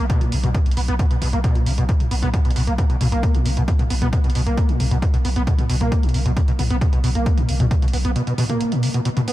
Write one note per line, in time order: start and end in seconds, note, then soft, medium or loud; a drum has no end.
0.10 0.23 B2 loud
0.10 kick loud
0.10 closed hi-hat medium
0.21 0.34 A#2 medium
0.21 closed hi-hat medium
0.21 mid tom medium
0.32 0.43 B1 loud
0.32 0.38 C#3 medium
0.32 open hi-hat loud
0.44 0.54 B1 medium
0.44 0.50 B2 medium
0.44 closed hi-hat medium
0.44 mid tom medium
0.55 0.58 B2 loud
0.55 kick loud
0.55 closed hi-hat medium
0.66 0.76 B1 medium
0.66 closed hi-hat soft
0.71 closed hi-hat medium
0.77 0.88 B1 loud
0.77 0.81 B3 medium
0.77 open hi-hat loud
0.88 0.99 B1 medium
0.88 0.94 B3 loud
0.88 closed hi-hat medium
0.99 1.06 B2 medium
0.99 kick loud
0.99 closed hi-hat medium
1.11 1.17 B2 medium
1.11 closed hi-hat medium
1.22 1.32 B1 loud
1.22 1.28 B2 loud
1.22 open hi-hat loud
1.22 mid tom medium
1.33 1.44 B1 medium
1.33 1.39 A#3 medium
1.33 closed hi-hat medium
1.44 1.57 B2 loud
1.44 kick loud
1.44 closed hi-hat medium
1.55 1.66 B1 medium
1.55 1.68 A#2 medium
1.55 closed hi-hat medium
1.66 1.77 B1 loud
1.66 1.73 C#3 medium
1.66 open hi-hat loud
1.78 1.89 B1 medium
1.78 1.84 B2 medium
1.78 closed hi-hat medium
1.89 1.93 B2 loud
1.89 kick loud
1.89 closed hi-hat medium
2.00 closed hi-hat medium
2.00 mid tom medium
2.11 2.22 B1 loud
2.11 2.15 B3 medium
2.11 open hi-hat loud
2.23 2.33 B1 medium
2.23 2.29 B3 loud
2.23 closed hi-hat medium
2.23 mid tom medium
2.34 2.40 B2 medium
2.34 kick loud
2.34 closed hi-hat medium
2.45 2.55 B1 medium
2.45 2.51 B2 medium
2.45 closed hi-hat soft
2.51 closed hi-hat medium
2.56 2.67 B1 loud
2.56 2.62 B2 loud
2.56 open hi-hat loud
2.67 2.78 B1 medium
2.67 2.73 A#3 medium
2.67 closed hi-hat medium
2.78 2.85 B2 medium
2.78 kick loud
2.78 closed hi-hat medium
2.90 2.96 B2 medium
2.90 closed hi-hat soft
3.01 3.12 B1 loud
3.01 3.07 B2 loud
3.01 open hi-hat loud
3.01 mid tom medium
3.12 3.23 B1 medium
3.12 3.36 A#3 medium
3.12 closed hi-hat medium
3.23 kick loud
3.23 closed hi-hat medium
3.35 3.45 B1 medium
3.35 3.47 A#2 medium
3.35 closed hi-hat soft
3.46 3.56 B1 loud
3.46 3.52 C#3 medium
3.46 open hi-hat loud
3.57 3.68 B1 medium
3.57 3.63 B2 medium
3.57 closed hi-hat medium
3.68 3.72 B2 loud
3.68 kick loud
3.68 closed hi-hat medium
3.79 3.83 B2 loud
3.79 closed hi-hat medium
3.79 mid tom medium
3.90 4.01 B1 loud
3.90 3.94 B3 medium
3.90 open hi-hat loud
4.02 4.13 B1 medium
4.02 4.08 B3 loud
4.02 closed hi-hat soft
4.02 mid tom loud
4.13 4.19 B2 medium
4.13 kick loud
4.13 closed hi-hat medium
4.24 4.35 B1 medium
4.24 4.30 B2 medium
4.24 closed hi-hat soft
4.30 closed hi-hat medium
4.35 4.46 B1 loud
4.35 4.41 B2 loud
4.35 open hi-hat loud
4.47 4.57 B1 medium
4.47 4.70 A#3 medium
4.47 closed hi-hat medium
4.58 kick loud
4.58 closed hi-hat medium
4.69 4.81 A#2 medium
4.69 closed hi-hat soft
4.80 4.91 B1 loud
4.80 4.86 C#3 medium
4.80 open hi-hat loud
4.80 mid tom loud
4.91 5.02 B1 medium
4.91 4.97 B2 medium
4.91 closed hi-hat medium
5.02 5.06 B2 loud
5.02 kick loud
5.02 closed hi-hat medium
5.14 5.24 B1 medium
5.14 5.17 B2 loud
5.14 closed hi-hat soft
5.25 5.35 B1 loud
5.25 5.28 B3 medium
5.25 open hi-hat loud
5.36 5.47 B1 medium
5.36 5.42 B3 loud
5.36 closed hi-hat medium
5.47 5.53 B2 medium
5.47 kick loud
5.47 closed hi-hat medium
5.58 5.65 B2 medium
5.58 closed hi-hat medium
5.58 mid tom loud
5.69 5.80 B1 loud
5.69 5.76 B2 loud
5.69 open hi-hat loud
5.81 5.92 B1 medium
5.81 6.05 A#3 medium
5.81 closed hi-hat medium
5.81 mid tom loud
5.92 kick loud
5.92 closed hi-hat medium
6.03 6.14 B1 medium
6.03 6.16 A#2 medium
6.03 closed hi-hat soft
6.09 closed hi-hat medium
6.14 6.25 B1 loud
6.14 6.21 C#3 medium
6.14 open hi-hat loud
6.26 6.36 B1 medium
6.26 6.32 B2 medium
6.26 closed hi-hat medium
6.37 6.40 B2 loud
6.37 kick loud
6.37 closed hi-hat medium
6.48 6.52 B2 loud
6.48 closed hi-hat soft
6.59 6.70 B1 loud
6.59 6.63 B3 medium
6.59 open hi-hat loud
6.59 mid tom loud
6.70 6.81 B1 medium
6.70 6.76 B3 medium
6.70 closed hi-hat medium
6.81 6.88 B2 medium
6.81 kick loud
6.81 closed hi-hat medium
6.93 7.03 B1 medium
6.93 6.99 B2 medium
6.93 closed hi-hat medium
7.04 7.15 B1 loud
7.04 7.10 B2 loud
7.04 open hi-hat loud
7.15 7.26 B1 medium
7.15 7.39 A#3 medium
7.15 closed hi-hat medium
7.26 kick loud
7.26 closed hi-hat medium
7.38 7.50 A#2 medium
7.38 closed hi-hat medium
7.38 mid tom loud
7.49 7.59 B1 loud
7.49 7.55 C#3 medium
7.49 open hi-hat loud
7.60 7.71 B1 medium
7.60 7.66 B2 medium
7.60 closed hi-hat medium
7.60 mid tom loud
7.71 7.75 B2 loud
7.71 kick loud
7.71 closed hi-hat medium
7.82 7.93 B1 medium
7.82 7.86 B2 loud
7.82 closed hi-hat soft
7.88 closed hi-hat medium
7.93 8.04 B1 loud
7.93 7.97 B3 medium
7.93 open hi-hat loud
8.05 8.16 B1 medium
8.05 8.11 B3 loud
8.05 closed hi-hat medium
8.16 8.22 B2 medium
8.16 closed hi-hat medium
8.27 8.33 B2 medium
8.27 closed hi-hat soft
8.38 8.44 B2 loud
8.38 open hi-hat loud
8.38 mid tom medium
8.49 8.73 A#3 medium
8.49 closed hi-hat medium
8.49 mid tom medium
8.61 closed hi-hat medium
8.72 8.84 A#2 medium
8.72 closed hi-hat medium
8.83 8.89 C#3 medium
8.83 open hi-hat loud
8.94 9.00 B2 medium
8.94 closed hi-hat medium
9.05 9.09 B2 loud
9.05 closed hi-hat medium
9.17 9.20 B2 loud
9.17 closed hi-hat medium
9.17 mid tom loud
9.28 9.33 B3 medium
9.28 open hi-hat loud